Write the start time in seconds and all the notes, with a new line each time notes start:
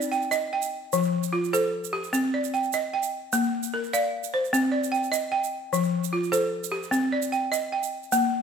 Already playing: C4 D5
0.02 shaker
0.12 G5, shaker
0.22 shaker
0.31 D#5, shaker
0.53 G5
0.62 shaker
0.93 F3, shaker
1.03 shaker
1.23 shaker
1.33 F4
1.44 shaker
1.53 A4 C5, shaker
1.84 shaker
1.93 G4
2.04 shaker
2.13 C4, shaker
2.34 D5
2.44 shaker
2.54 G5, shaker
2.63 shaker
2.73 D#5, shaker
2.94 G5
3.03 shaker
3.33 A#3, shaker
3.43 shaker
3.63 shaker
3.74 A#4
3.84 shaker
3.93 D5 F5, shaker
4.24 shaker
4.34 C5
4.45 shaker
4.53 C4, shaker
4.72 D5
4.84 shaker
4.92 G5, shaker
5.03 shaker
5.12 D#5, shaker
5.32 G5
5.44 shaker
5.73 F3, shaker
5.83 shaker
6.04 shaker
6.13 F4
6.24 shaker
6.32 A4 C5, shaker
6.64 shaker
6.72 G4
6.83 shaker
6.91 C4, shaker
7.12 D5
7.22 shaker
7.32 G5, shaker
7.52 D#5, shaker
7.72 G5
7.83 shaker
8.03 shaker
8.12 A#3, shaker